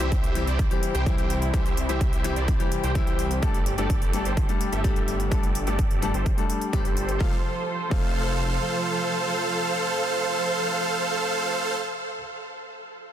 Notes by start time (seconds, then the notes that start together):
Already playing: C3 C4 E4 G4
0.00 C2 C4 G4 C5 E5
0.12 kick, closed hi-hat
0.24 closed hi-hat
0.35 E3 G3 C4 G4, closed hi-hat
0.47 C2 G4 C5 D5, closed hi-hat
0.59 kick, closed hi-hat
0.70 E3 G3 C4 G4, closed hi-hat
0.83 closed hi-hat
0.95 C2 G4 C5 G5, closed hi-hat
1.06 E3 G3 C4 E4, kick, closed hi-hat
1.18 C2 G4 C5 G5, closed hi-hat
1.30 closed hi-hat
1.42 closed hi-hat
1.53 C2 E3 G3 C4 G4 C5 E5, kick, closed hi-hat
1.66 closed hi-hat
1.77 closed hi-hat
1.89 C2 E3 G3 C4 G4 C5 E5, closed hi-hat
2.01 kick, closed hi-hat
2.13 closed hi-hat
2.24 E3 G3 C4 G4, closed hi-hat
2.36 C2 G4 C5 D5, closed hi-hat
2.48 kick, closed hi-hat
2.59 E3 G3 C4 G4, closed hi-hat
2.72 closed hi-hat
2.84 C2 G4 C5 G5, closed hi-hat
2.95 E3 G3 C4 E4, kick, closed hi-hat
3.07 C2 G4 C5 G5, closed hi-hat
3.19 closed hi-hat
3.31 closed hi-hat
3.42 G1 G3 A3 D4 G4 A4 D5, kick, closed hi-hat
3.54 closed hi-hat
3.66 closed hi-hat
3.78 G1 G3 A3 D4 G4 A4 D5, closed hi-hat
3.90 kick, closed hi-hat
4.02 closed hi-hat
4.13 G3 A3 D4 A4, closed hi-hat
4.25 G1 G4 A4 C5, closed hi-hat
4.37 kick, closed hi-hat
4.48 G3 A3 D4 A4, closed hi-hat
4.61 closed hi-hat
4.72 G1 G4 A4 E5, closed hi-hat
4.84 G3 A3 D4 G4, kick, closed hi-hat
4.96 G1 G4 A4 E5, closed hi-hat
5.08 closed hi-hat
5.20 closed hi-hat
5.31 G1 G3 A3 D4 G4 A4 D5, kick, closed hi-hat
5.43 closed hi-hat
5.55 closed hi-hat
5.66 G1 G3 A3 D4 G4 A4 D5, closed hi-hat
5.79 kick, closed hi-hat
5.91 closed hi-hat
6.02 G3 A3 D4 A4, closed hi-hat
6.14 G1 G4 A4 C5, closed hi-hat
6.26 kick, closed hi-hat
6.37 G3 A3 D4 A4, closed hi-hat
6.50 closed hi-hat
6.61 closed hi-hat
6.73 G1 G3 A3 D4 G4 A4 C5, kick, closed hi-hat
6.85 closed hi-hat
6.97 closed hi-hat
7.09 closed hi-hat
7.19 F1 C3 F3 A3 F4 A4 C5 F5, kick
7.90 F1 C3 F3 A3 F4 A4 C5 F5, kick